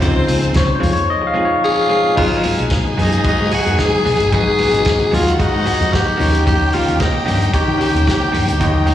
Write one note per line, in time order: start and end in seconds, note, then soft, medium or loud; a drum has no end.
0.00 0.22 C#2 loud
0.00 0.79 F3 medium
0.00 0.22 G#3 medium
0.00 0.78 C4 loud
0.00 0.14 C4 medium
0.00 0.79 C4 medium
0.00 0.80 D#4 medium
0.00 0.14 F4 loud
0.00 0.13 G#4 loud
0.00 0.79 C5 loud
0.00 kick loud
0.00 closed hi-hat medium
0.00 muted conga soft
0.14 muted clean electric guitar stroke medium
0.26 0.49 C#2 loud
0.26 0.41 G#3 medium
0.26 0.41 C4 medium
0.26 0.40 F4 medium
0.26 0.39 G#4 medium
0.26 open hi-hat medium
0.26 muted conga soft
0.26 high conga medium
0.40 0.52 G#3 soft
0.40 0.53 C4 medium
0.40 0.53 F4 soft
0.40 0.54 G#4 medium
0.40 closed hi-hat soft
0.53 0.76 C#2 medium
0.53 0.75 C#5 medium
0.53 muted clean electric guitar stroke soft
0.53 kick loud
0.53 snare loud
0.53 closed hi-hat medium
0.53 muted conga soft
0.67 muted clean electric guitar stroke soft
0.75 0.93 C5 medium
0.80 1.02 F2 medium
0.80 0.98 G#3 medium
0.80 0.94 C4 medium
0.80 0.93 F4 loud
0.80 0.92 G#4 medium
0.80 open hi-hat medium
0.80 high conga medium
0.80 low conga medium
0.93 1.11 C#5 medium
0.93 muted clean electric guitar stroke soft
0.97 closed hi-hat soft
1.10 1.26 D#5 loud
1.22 muted clean electric guitar stroke medium
1.27 1.46 F5 loud
1.34 1.60 F3 soft
1.34 1.52 G#3 medium
1.34 1.49 C4 medium
1.34 1.60 C4 soft
1.34 1.61 D#4 medium
1.34 1.48 F4 medium
1.34 1.48 G#4 medium
1.45 1.63 C#5 medium
1.45 muted clean electric guitar stroke medium
1.62 2.14 G#4 loud
1.62 1.82 C#5 medium
1.62 muted clean electric guitar stroke soft
1.76 muted clean electric guitar stroke soft
1.81 2.15 F5 medium
1.88 2.03 G#3 medium
1.88 2.03 C4 loud
1.88 2.02 F4 medium
1.88 2.01 G#4 loud
2.03 2.14 G#3 medium
2.03 2.15 C4 medium
2.03 2.16 F4 medium
2.03 2.15 G#4 medium
2.15 2.47 G#1 loud
2.15 2.33 F#3 medium
2.15 2.85 F#3 medium
2.15 2.85 G#3 medium
2.15 2.33 B3 loud
2.15 2.85 D#4 medium
2.15 2.33 D#4 medium
2.15 2.67 F4 loud
2.15 2.34 G#4 loud
2.15 5.08 G#4 loud
2.15 2.86 B4 medium
2.15 5.08 G#5 loud
2.15 kick loud
2.15 crash loud
2.15 muted conga soft
2.15 low conga medium
2.42 2.56 F#3 medium
2.42 2.57 B3 medium
2.42 2.57 D#4 medium
2.42 2.56 G#4 medium
2.42 open hi-hat medium
2.42 muted conga soft
2.42 high conga medium
2.58 2.78 B1 medium
2.58 2.69 F#3 medium
2.58 2.70 B3 medium
2.58 2.70 D#4 medium
2.58 2.70 G#4 medium
2.58 closed hi-hat soft
2.70 muted clean electric guitar stroke soft
2.70 kick loud
2.70 snare loud
2.70 closed hi-hat medium
2.70 muted conga soft
2.70 high conga medium
2.85 muted clean electric guitar stroke medium
2.97 3.17 F#2 medium
2.97 3.12 F#3 loud
2.97 3.11 B3 medium
2.97 3.11 D#4 loud
2.97 3.10 G#4 loud
2.97 open hi-hat medium
2.97 high conga medium
2.97 low conga medium
3.01 3.25 D#4 loud
3.11 3.23 F#3 medium
3.11 3.24 B3 medium
3.11 3.24 D#4 medium
3.11 3.23 G#4 medium
3.11 closed hi-hat soft
3.24 3.92 G#3 medium
3.24 3.93 D#4 medium
3.24 3.93 F#4 medium
3.24 3.93 B4 medium
3.24 muted fingered electric bass stroke medium
3.24 muted clean electric guitar stroke soft
3.24 kick loud
3.24 closed hi-hat medium
3.24 muted conga soft
3.28 3.51 D#4 loud
3.39 3.49 G#2 loud
3.39 muted clean electric guitar stroke soft
3.51 3.66 F#3 medium
3.51 3.65 B3 medium
3.51 3.65 D#4 medium
3.51 3.82 F#4 loud
3.51 3.64 G#4 medium
3.51 open hi-hat medium
3.65 3.76 F#2 loud
3.65 3.78 F#3 medium
3.65 3.78 B3 medium
3.65 3.78 D#4 medium
3.65 3.77 G#4 medium
3.65 closed hi-hat soft
3.65 high conga medium
3.79 3.89 G#2 medium
3.79 4.33 G#4 loud
3.79 kick loud
3.79 snare loud
3.79 closed hi-hat medium
3.79 muted conga soft
3.92 muted clean electric guitar stroke soft
4.05 4.16 B1 medium
4.05 4.22 F#3 medium
4.05 4.20 B3 loud
4.05 4.20 D#4 medium
4.05 4.19 G#4 loud
4.05 open hi-hat medium
4.05 muted conga soft
4.05 high conga medium
4.05 low conga medium
4.20 4.29 G1 medium
4.20 muted clean electric guitar stroke medium
4.20 closed hi-hat medium
4.32 4.63 G#1 loud
4.32 4.49 F#3 medium
4.32 5.00 G#3 medium
4.32 4.46 B3 loud
4.32 5.01 D#4 medium
4.32 4.46 D#4 loud
4.32 5.01 F#4 medium
4.32 5.16 G#4 loud
4.32 4.45 G#4 medium
4.32 5.01 B4 medium
4.32 kick loud
4.32 closed hi-hat medium
4.32 muted conga soft
4.32 low conga medium
4.46 muted clean electric guitar stroke medium
4.58 4.72 F#3 medium
4.58 4.72 B3 medium
4.58 4.72 D#4 medium
4.58 4.72 G#4 medium
4.58 open hi-hat medium
4.58 high conga medium
4.73 4.93 G#1 loud
4.73 4.84 F#3 medium
4.73 4.84 B3 medium
4.73 4.85 D#4 medium
4.73 4.85 G#4 medium
4.73 closed hi-hat soft
4.85 muted clean electric guitar stroke soft
4.85 kick loud
4.85 snare loud
4.85 closed hi-hat medium
4.85 muted conga soft
4.85 high conga medium
5.00 muted clean electric guitar stroke medium
5.11 5.33 D#2 loud
5.11 5.29 F#3 medium
5.11 5.26 B3 loud
5.11 5.26 D#4 loud
5.11 5.34 F4 loud
5.11 6.17 F#4 medium
5.11 5.25 G#4 loud
5.11 6.17 F#5 loud
5.11 open hi-hat medium
5.11 muted conga soft
5.11 high conga medium
5.11 low conga medium
5.26 muted clean electric guitar stroke medium
5.26 closed hi-hat soft
5.34 5.41 F4 medium
5.39 6.08 G#3 medium
5.39 5.95 D#4 loud
5.39 6.08 D#4 medium
5.39 6.08 F#4 medium
5.39 6.08 B4 medium
5.39 muted fingered electric bass stroke soft
5.39 kick loud
5.39 closed hi-hat medium
5.53 5.64 G#2 medium
5.53 muted clean electric guitar stroke medium
5.65 5.82 F#3 medium
5.65 5.79 B3 medium
5.65 5.79 D#4 medium
5.65 5.78 G#4 medium
5.65 open hi-hat medium
5.79 5.90 F2 medium
5.79 muted clean electric guitar stroke medium
5.79 closed hi-hat soft
5.79 high conga medium
5.91 6.46 G4 loud
5.91 muted clean electric guitar stroke medium
5.91 kick loud
5.91 snare loud
5.95 closed hi-hat medium
6.05 muted clean electric guitar stroke medium
6.17 6.70 D#2 medium
6.17 6.32 D#3 medium
6.17 7.06 D#3 medium
6.17 6.32 A#3 medium
6.17 6.32 C#4 loud
6.17 7.06 D#4 medium
6.17 6.31 G4 medium
6.17 8.94 G4 medium
6.17 7.06 G4 medium
6.17 7.06 C#5 loud
6.17 8.94 G5 loud
6.17 open hi-hat medium
6.17 muted conga soft
6.17 high conga medium
6.17 low conga medium
6.32 6.43 D#3 medium
6.32 6.44 A#3 medium
6.32 6.44 C#4 medium
6.32 6.45 G4 medium
6.32 closed hi-hat medium
6.44 6.62 D#3 medium
6.44 6.62 A#3 loud
6.44 6.63 C#4 medium
6.44 6.63 G4 medium
6.44 6.75 G4 loud
6.44 kick loud
6.44 closed hi-hat medium
6.44 muted conga soft
6.44 low conga medium
6.72 6.86 D#3 medium
6.72 6.86 A#3 medium
6.72 6.85 C#4 medium
6.72 7.02 F4 loud
6.72 6.85 G4 medium
6.72 open hi-hat medium
6.72 muted conga soft
6.72 high conga medium
6.86 7.08 D#2 medium
6.86 6.98 D#3 medium
6.86 6.98 A#3 medium
6.86 6.98 C#4 medium
6.86 6.99 G4 medium
6.86 closed hi-hat soft
6.99 7.53 D#4 loud
6.99 muted clean electric guitar stroke medium
6.99 kick loud
6.99 snare loud
6.99 closed hi-hat medium
6.99 muted conga soft
6.99 high conga medium
7.12 muted clean electric guitar stroke medium
7.25 7.48 G2 medium
7.25 7.40 D#3 medium
7.25 7.39 A#3 medium
7.25 7.39 C#4 medium
7.25 7.38 G4 loud
7.25 open hi-hat medium
7.25 muted conga soft
7.25 high conga medium
7.25 low conga medium
7.39 7.51 D#3 medium
7.39 7.51 A#3 medium
7.39 7.52 C#4 medium
7.39 7.52 G4 medium
7.39 closed hi-hat soft
7.53 8.22 D#3 medium
7.53 8.22 D#4 medium
7.53 7.79 G4 loud
7.53 8.22 G4 medium
7.53 8.22 C#5 medium
7.53 muted clean electric guitar stroke soft
7.53 muted fingered electric bass stroke soft
7.53 kick loud
7.53 closed hi-hat medium
7.53 muted conga soft
7.66 7.77 D#3 medium
7.66 muted clean electric guitar stroke medium
7.78 7.94 D#3 medium
7.78 7.93 A#3 medium
7.78 7.92 C#4 loud
7.78 7.92 G4 loud
7.78 8.06 G4 loud
7.78 open hi-hat medium
7.78 muted conga soft
7.93 8.04 D#2 loud
7.93 8.07 D#3 medium
7.93 8.06 A#3 medium
7.93 8.06 C#4 medium
7.93 8.06 G4 medium
7.93 closed hi-hat soft
7.93 high conga medium
8.06 8.18 D#3 loud
8.06 8.63 G4 loud
8.06 kick loud
8.06 snare loud
8.06 closed hi-hat medium
8.20 muted clean electric guitar stroke medium
8.32 8.44 G2 medium
8.32 8.50 D#3 medium
8.32 8.47 A#3 medium
8.32 8.46 C#4 medium
8.32 8.45 G4 loud
8.32 open hi-hat medium
8.32 muted conga soft
8.32 high conga medium
8.32 low conga medium
8.46 8.61 D2 medium
8.46 muted clean electric guitar stroke medium
8.46 closed hi-hat medium
8.59 8.91 D#2 loud
8.59 8.77 D#3 medium
8.59 8.94 D#3 medium
8.59 8.74 A#3 medium
8.59 8.74 C#4 medium
8.59 8.94 D#4 medium
8.59 8.94 G4 medium
8.59 8.73 G4 medium
8.59 8.94 C#5 medium
8.59 kick loud
8.59 closed hi-hat medium
8.59 muted conga soft
8.59 low conga medium
8.74 muted clean electric guitar stroke soft
8.85 8.94 D#3 medium
8.85 8.94 A#3 medium
8.85 8.94 C#4 medium
8.85 8.94 G4 medium
8.85 open hi-hat medium
8.85 muted conga soft
8.85 high conga medium